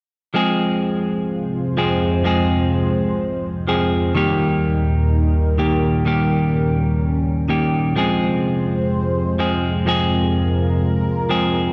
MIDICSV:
0, 0, Header, 1, 3, 480
1, 0, Start_track
1, 0, Key_signature, -4, "minor"
1, 0, Tempo, 476190
1, 352, Time_signature, 4, 2, 24, 8
1, 11822, End_track
2, 0, Start_track
2, 0, Title_t, "Clean electric guitar"
2, 0, Program_c, 0, 27
2, 340, Note_on_c, 0, 53, 73
2, 348, Note_on_c, 0, 56, 74
2, 356, Note_on_c, 0, 60, 70
2, 364, Note_on_c, 0, 68, 85
2, 1757, Note_off_c, 0, 53, 0
2, 1761, Note_off_c, 0, 56, 0
2, 1765, Note_off_c, 0, 60, 0
2, 1769, Note_off_c, 0, 68, 0
2, 1786, Note_on_c, 0, 53, 69
2, 1789, Note_on_c, 0, 56, 57
2, 1798, Note_on_c, 0, 60, 59
2, 1798, Note_on_c, 0, 68, 74
2, 2240, Note_off_c, 0, 53, 0
2, 2242, Note_off_c, 0, 56, 0
2, 2244, Note_off_c, 0, 60, 0
2, 2246, Note_off_c, 0, 68, 0
2, 2260, Note_on_c, 0, 53, 79
2, 2268, Note_on_c, 0, 56, 73
2, 2276, Note_on_c, 0, 60, 75
2, 2284, Note_on_c, 0, 68, 85
2, 3677, Note_off_c, 0, 53, 0
2, 3681, Note_off_c, 0, 56, 0
2, 3685, Note_off_c, 0, 60, 0
2, 3689, Note_off_c, 0, 68, 0
2, 3704, Note_on_c, 0, 53, 73
2, 3714, Note_on_c, 0, 56, 53
2, 3714, Note_on_c, 0, 60, 63
2, 3718, Note_on_c, 0, 68, 77
2, 4160, Note_off_c, 0, 53, 0
2, 4162, Note_off_c, 0, 56, 0
2, 4164, Note_off_c, 0, 60, 0
2, 4166, Note_off_c, 0, 68, 0
2, 4180, Note_on_c, 0, 51, 80
2, 4188, Note_on_c, 0, 55, 72
2, 4196, Note_on_c, 0, 58, 73
2, 4204, Note_on_c, 0, 67, 89
2, 5597, Note_off_c, 0, 51, 0
2, 5601, Note_off_c, 0, 55, 0
2, 5605, Note_off_c, 0, 58, 0
2, 5609, Note_off_c, 0, 67, 0
2, 5626, Note_on_c, 0, 51, 65
2, 5634, Note_on_c, 0, 58, 62
2, 5636, Note_on_c, 0, 55, 51
2, 5638, Note_on_c, 0, 67, 76
2, 6080, Note_off_c, 0, 51, 0
2, 6082, Note_off_c, 0, 55, 0
2, 6084, Note_off_c, 0, 58, 0
2, 6087, Note_off_c, 0, 67, 0
2, 6101, Note_on_c, 0, 51, 78
2, 6108, Note_on_c, 0, 55, 73
2, 6116, Note_on_c, 0, 58, 68
2, 6125, Note_on_c, 0, 67, 84
2, 7518, Note_off_c, 0, 51, 0
2, 7521, Note_off_c, 0, 55, 0
2, 7526, Note_off_c, 0, 58, 0
2, 7530, Note_off_c, 0, 67, 0
2, 7544, Note_on_c, 0, 51, 69
2, 7553, Note_on_c, 0, 58, 61
2, 7555, Note_on_c, 0, 55, 53
2, 7563, Note_on_c, 0, 67, 70
2, 8001, Note_off_c, 0, 51, 0
2, 8003, Note_off_c, 0, 55, 0
2, 8004, Note_off_c, 0, 58, 0
2, 8006, Note_off_c, 0, 67, 0
2, 8020, Note_on_c, 0, 53, 79
2, 8028, Note_on_c, 0, 56, 70
2, 8036, Note_on_c, 0, 60, 71
2, 8044, Note_on_c, 0, 68, 86
2, 9437, Note_off_c, 0, 53, 0
2, 9441, Note_off_c, 0, 56, 0
2, 9445, Note_off_c, 0, 60, 0
2, 9449, Note_off_c, 0, 68, 0
2, 9466, Note_on_c, 0, 53, 67
2, 9469, Note_on_c, 0, 56, 66
2, 9476, Note_on_c, 0, 60, 61
2, 9478, Note_on_c, 0, 68, 76
2, 9920, Note_off_c, 0, 53, 0
2, 9922, Note_off_c, 0, 56, 0
2, 9924, Note_off_c, 0, 60, 0
2, 9926, Note_off_c, 0, 68, 0
2, 9940, Note_on_c, 0, 53, 75
2, 9948, Note_on_c, 0, 56, 76
2, 9956, Note_on_c, 0, 60, 72
2, 9964, Note_on_c, 0, 68, 86
2, 11357, Note_off_c, 0, 53, 0
2, 11361, Note_off_c, 0, 56, 0
2, 11365, Note_off_c, 0, 60, 0
2, 11369, Note_off_c, 0, 68, 0
2, 11384, Note_on_c, 0, 53, 75
2, 11394, Note_on_c, 0, 60, 62
2, 11395, Note_on_c, 0, 56, 55
2, 11398, Note_on_c, 0, 68, 80
2, 11822, Note_off_c, 0, 53, 0
2, 11822, Note_off_c, 0, 56, 0
2, 11822, Note_off_c, 0, 60, 0
2, 11822, Note_off_c, 0, 68, 0
2, 11822, End_track
3, 0, Start_track
3, 0, Title_t, "Analog synth pad"
3, 0, Program_c, 1, 89
3, 352, Note_on_c, 1, 41, 80
3, 352, Note_on_c, 1, 65, 74
3, 353, Note_on_c, 1, 48, 71
3, 353, Note_on_c, 1, 56, 76
3, 353, Note_on_c, 1, 72, 93
3, 4154, Note_off_c, 1, 41, 0
3, 4154, Note_off_c, 1, 48, 0
3, 4154, Note_off_c, 1, 56, 0
3, 4154, Note_off_c, 1, 65, 0
3, 4154, Note_off_c, 1, 72, 0
3, 4192, Note_on_c, 1, 39, 81
3, 4192, Note_on_c, 1, 46, 78
3, 4192, Note_on_c, 1, 63, 77
3, 4192, Note_on_c, 1, 70, 90
3, 4193, Note_on_c, 1, 55, 77
3, 6093, Note_off_c, 1, 63, 0
3, 6112, Note_on_c, 1, 61, 72
3, 7994, Note_off_c, 1, 39, 0
3, 7994, Note_off_c, 1, 46, 0
3, 7994, Note_off_c, 1, 55, 0
3, 7994, Note_off_c, 1, 70, 0
3, 8013, Note_off_c, 1, 61, 0
3, 8031, Note_on_c, 1, 48, 75
3, 8031, Note_on_c, 1, 56, 73
3, 8031, Note_on_c, 1, 65, 75
3, 8032, Note_on_c, 1, 41, 79
3, 8032, Note_on_c, 1, 72, 90
3, 9933, Note_off_c, 1, 72, 0
3, 9951, Note_on_c, 1, 70, 91
3, 11822, Note_off_c, 1, 41, 0
3, 11822, Note_off_c, 1, 48, 0
3, 11822, Note_off_c, 1, 56, 0
3, 11822, Note_off_c, 1, 65, 0
3, 11822, Note_off_c, 1, 70, 0
3, 11822, End_track
0, 0, End_of_file